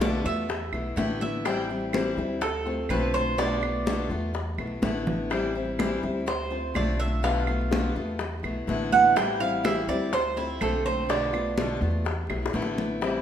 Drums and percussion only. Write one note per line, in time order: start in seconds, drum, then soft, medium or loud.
0.01 high bongo medium
0.01 high conga medium
0.26 high bongo soft
0.26 high conga soft
0.50 high bongo medium
0.50 high conga soft
0.73 high bongo soft
0.73 high conga soft
0.73 claves medium
0.98 high bongo soft
0.98 low bongo medium
0.98 high conga medium
1.22 high conga medium
1.45 high bongo medium
1.45 high conga soft
1.45 claves medium
1.69 high bongo soft
1.69 high conga soft
1.93 high bongo medium
1.93 high conga medium
1.93 claves medium
2.18 high bongo soft
2.18 high conga soft
2.42 high bongo medium
2.42 high conga soft
2.67 high bongo soft
2.67 high conga soft
2.89 high bongo soft
2.89 low bongo medium
2.89 high conga medium
2.89 claves medium
3.39 high bongo medium
3.39 high conga soft
3.63 high bongo soft
3.63 high conga soft
3.63 claves medium
3.87 high bongo medium
3.87 high conga medium
4.11 high bongo soft
4.11 high conga soft
4.35 high bongo medium
4.35 high conga soft
4.58 high bongo soft
4.58 high conga soft
4.58 claves medium
4.82 high bongo soft
4.82 low bongo medium
4.82 high conga medium
5.07 low conga medium
5.31 high bongo medium
5.31 high conga soft
5.31 claves medium
5.55 high bongo soft
5.55 high conga soft
5.79 high bongo medium
5.79 high conga medium
5.79 claves medium
6.04 high bongo soft
6.04 high conga soft
6.28 high bongo medium
6.28 high conga soft
6.52 high bongo soft
6.52 high conga soft
6.75 high bongo soft
6.75 low bongo medium
6.75 high conga medium
6.75 claves medium
7.24 high bongo medium
7.24 high conga soft
7.47 high bongo soft
7.47 high conga soft
7.47 claves medium
7.71 high bongo medium
7.71 high conga loud
7.96 high bongo soft
7.96 high conga soft
8.19 high bongo medium
8.19 high conga soft
8.44 high bongo soft
8.44 high conga soft
8.44 claves medium
8.68 high bongo soft
8.68 low bongo medium
8.68 high conga medium
8.93 high conga medium
9.17 high bongo medium
9.17 high conga soft
9.17 claves medium
9.41 high bongo soft
9.41 high conga soft
9.65 high bongo medium
9.65 high conga medium
9.65 claves medium
9.89 high bongo soft
9.89 high conga soft
10.13 high bongo medium
10.13 high conga soft
10.37 high bongo soft
10.37 high conga soft
10.61 high bongo soft
10.61 low bongo medium
10.61 high conga medium
10.61 claves medium
10.86 high conga medium
11.10 high bongo medium
11.10 high conga soft
11.34 high bongo soft
11.34 high conga soft
11.34 claves medium
11.58 high bongo medium
11.58 high conga medium
11.82 high bongo soft
11.82 high conga soft
12.06 high bongo medium
12.06 high conga soft
12.30 high bongo medium
12.30 high conga soft
12.30 claves medium
12.46 high bongo loud
12.54 high conga medium
12.62 low bongo medium
12.78 low bongo medium
12.78 high conga medium
13.02 high bongo medium
13.02 high conga soft